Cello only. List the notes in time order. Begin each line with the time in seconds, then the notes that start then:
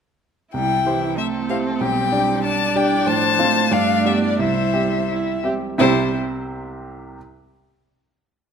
0.55 G3
0.86 E3
1.17 A3
1.81 G3
3.05 F3
3.38 A3
4.39 G3
5.78 C3